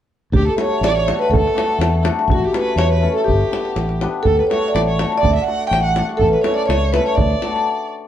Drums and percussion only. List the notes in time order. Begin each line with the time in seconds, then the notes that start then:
0.33 davul low
0.47 davul high
0.58 davul high
0.84 davul high
1.08 davul high
1.22 davul high
1.33 davul low
1.47 davul high
1.58 davul high
1.81 davul high
2.05 davul high
2.19 davul high
2.30 davul low
2.42 davul high
2.54 davul high
2.79 davul high
3.17 davul high
3.28 davul low
3.41 davul high
3.53 davul high
3.65 davul high
3.76 davul high
3.89 davul high
4.01 davul high
4.25 davul low
4.39 davul high
4.51 davul high
4.76 davul high
4.99 davul high
5.12 davul high
5.24 davul low
5.39 davul high
5.73 davul high
5.96 davul high
6.09 davul high
6.21 davul low
6.33 davul high
6.44 davul high
6.70 davul high
6.94 davul high
7.07 davul high
7.18 davul low
7.30 davul high
7.42 davul high
7.56 davul high